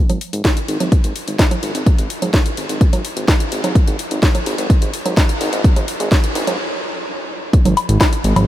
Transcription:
0.09 0.18 G#1 medium
0.09 closed hi-hat medium
0.09 low conga medium
0.21 open hi-hat loud
0.33 0.42 G#1 medium
0.33 closed hi-hat medium
0.45 kick loud
0.45 snare loud
0.45 closed hi-hat medium
0.57 closed hi-hat medium
0.68 0.77 G#1 medium
0.68 open hi-hat loud
0.80 0.89 G#1 medium
0.80 closed hi-hat medium
0.80 low conga medium
0.92 kick loud
0.92 closed hi-hat medium
1.04 1.13 G#1 medium
1.04 closed hi-hat medium
1.16 open hi-hat loud
1.28 1.36 G#1 medium
1.28 closed hi-hat medium
1.39 kick loud
1.39 snare loud
1.39 closed hi-hat medium
1.51 closed hi-hat medium
1.51 low conga medium
1.63 1.72 G#1 medium
1.63 open hi-hat loud
1.75 1.84 G#1 medium
1.75 closed hi-hat medium
1.86 kick loud
1.86 closed hi-hat medium
1.98 2.07 G#1 medium
1.98 closed hi-hat medium
2.10 open hi-hat loud
2.22 2.31 G#1 medium
2.22 closed hi-hat medium
2.22 low conga medium
2.34 kick loud
2.34 snare loud
2.34 closed hi-hat medium
2.46 closed hi-hat medium
2.57 2.66 G#1 medium
2.57 open hi-hat loud
2.69 2.78 G#1 medium
2.69 closed hi-hat medium
2.81 kick loud
2.81 closed hi-hat medium
2.93 3.02 G#1 medium
2.93 closed hi-hat medium
2.93 low conga medium
3.05 open hi-hat loud
3.17 3.25 G#1 medium
3.17 closed hi-hat medium
3.28 kick loud
3.28 snare loud
3.28 closed hi-hat medium
3.40 closed hi-hat medium
3.52 3.61 G#1 medium
3.52 open hi-hat loud
3.64 3.73 G#1 medium
3.64 closed hi-hat medium
3.64 low conga medium
3.75 kick loud
3.75 closed hi-hat medium
3.87 3.96 G#1 medium
3.87 closed hi-hat medium
3.99 open hi-hat loud
4.11 4.20 G#1 medium
4.11 closed hi-hat medium
4.23 kick loud
4.23 snare loud
4.23 closed hi-hat medium
4.35 closed hi-hat medium
4.35 low conga medium
4.46 4.55 G#1 medium
4.46 open hi-hat loud
4.58 4.67 G#1 medium
4.58 closed hi-hat medium
4.70 kick loud
4.70 closed hi-hat medium
4.82 4.91 G#1 medium
4.82 closed hi-hat medium
4.94 open hi-hat loud
5.06 5.14 G#1 medium
5.06 closed hi-hat medium
5.06 low conga medium
5.17 kick loud
5.17 snare loud
5.17 closed hi-hat medium
5.29 closed hi-hat medium
5.41 5.50 G#1 medium
5.41 open hi-hat loud
5.53 5.62 G#1 medium
5.53 closed hi-hat medium
5.64 kick loud
5.64 closed hi-hat medium
5.76 5.85 G#1 medium
5.76 closed hi-hat soft
5.76 low conga medium
5.88 open hi-hat loud
6.00 6.09 G#1 medium
6.00 closed hi-hat medium
6.12 kick loud
6.12 snare loud
6.12 closed hi-hat medium
6.24 closed hi-hat medium
6.35 6.44 G#1 medium
6.35 open hi-hat loud
6.47 6.56 G#1 medium
6.47 closed hi-hat medium
6.47 low conga loud
7.53 kick loud
7.53 closed hi-hat medium
7.65 7.74 G#1 medium
7.65 closed hi-hat medium
7.65 low conga medium
7.77 open hi-hat loud
7.77 low woodblock soft
7.89 7.98 G#1 medium
7.89 closed hi-hat medium
8.01 kick loud
8.01 snare loud
8.01 closed hi-hat medium
8.01 low woodblock medium
8.13 closed hi-hat medium
8.24 8.33 G#1 medium
8.24 open hi-hat loud
8.36 8.45 G#1 medium
8.36 closed hi-hat medium
8.36 low conga medium
8.36 low woodblock soft

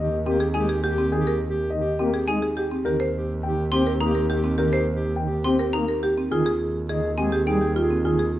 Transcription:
0.00 2.70 D#2 medium
0.00 0.20 G4 medium
0.00 0.16 D#5 medium
0.26 0.37 A#3 medium
0.26 0.45 C4 medium
0.26 0.45 G4 medium
0.26 0.50 G4 medium
0.40 0.59 G#4 medium
0.54 0.66 G#3 medium
0.54 0.73 D#4 medium
0.54 0.73 G#4 medium
0.54 0.73 G#5 medium
0.59 0.80 G4 medium
0.69 0.88 G#4 medium
0.83 1.02 G4 medium
0.90 1.11 G4 medium
0.98 1.17 C4 medium
1.12 1.23 D#3 medium
1.12 1.31 G4 medium
1.12 1.31 G#4 medium
1.20 1.41 G4 medium
1.27 1.46 A#4 medium
1.50 1.71 G4 medium
1.70 1.81 D#3 medium
1.70 1.89 D#5 medium
1.80 2.01 G4 medium
1.99 2.10 A#3 medium
1.99 2.18 C4 medium
1.99 2.18 G4 medium
2.10 2.31 G4 medium
2.10 2.32 G#4 medium
2.27 2.38 G#3 medium
2.27 2.47 D#4 medium
2.27 2.47 G#4 medium
2.27 2.46 G#5 medium
2.41 2.62 G4 soft
2.41 2.61 G#4 medium
2.57 2.75 G4 medium
2.57 2.76 G4 medium
2.71 2.90 C4 medium
2.85 6.16 D#2 medium
2.85 2.96 D#3 medium
2.85 3.07 G4 soft
2.85 3.04 G4 medium
2.85 3.04 A#4 medium
3.00 3.19 C5 medium
3.16 3.37 G4 medium
3.42 3.53 D#3 medium
3.42 3.66 G4 medium
3.42 3.62 G5 medium
3.72 3.83 C4 medium
3.72 3.91 C4 medium
3.72 3.91 G4 medium
3.72 3.96 G4 medium
3.72 3.91 C6 medium
3.87 4.05 A#4 medium
4.01 4.12 A#3 medium
4.01 4.20 D#4 medium
4.01 4.26 G4 medium
4.01 4.20 A#4 medium
4.01 4.19 A#5 medium
4.15 4.34 A#4 medium
4.29 4.48 G4 medium
4.35 4.57 G4 medium
4.44 4.63 C4 medium
4.58 4.69 D#3 medium
4.58 4.77 G4 medium
4.58 4.77 A#4 medium
4.65 4.87 G4 medium
4.73 4.92 C5 medium
4.95 5.17 G4 medium
5.16 5.27 D#3 medium
5.16 5.35 G5 medium
5.25 5.47 G4 medium
5.45 5.56 C4 medium
5.45 5.64 C4 medium
5.45 5.64 G4 medium
5.45 5.64 C6 medium
5.56 5.78 G4 medium
5.56 5.78 A#4 medium
5.73 5.85 A#3 medium
5.73 5.93 D#4 medium
5.73 5.93 A#4 medium
5.73 5.92 A#5 medium
5.86 6.08 G4 soft
5.86 6.07 A#4 medium
6.02 6.21 G4 medium
6.02 6.22 G4 medium
6.17 6.36 C4 medium
6.30 8.39 D#2 medium
6.30 6.42 D#3 medium
6.30 6.50 F4 medium
6.30 6.51 G#4 soft
6.30 6.50 G#4 medium
6.46 6.65 G#4 medium
6.61 6.82 G#4 soft
6.89 7.00 D#3 medium
6.89 7.08 G#4 medium
6.89 7.12 G#4 medium
6.89 7.08 D#5 medium
7.18 7.29 G#3 medium
7.18 7.37 C4 medium
7.18 7.37 G4 medium
7.18 7.42 G#4 medium
7.18 7.37 G#5 medium
7.32 7.51 G4 medium
7.46 7.58 G3 medium
7.46 7.66 D#4 medium
7.46 7.65 G#4 medium
7.46 7.66 G5 medium
7.51 7.72 G#4 medium
7.61 7.80 G4 medium
7.74 7.95 F4 medium
7.74 7.94 G4 medium
7.81 8.03 G#4 medium
7.90 8.09 C4 medium
8.04 8.15 D#3 medium
8.04 8.24 F4 medium
8.04 8.23 G#4 medium
8.12 8.33 G#4 medium
8.19 8.38 G#4 medium

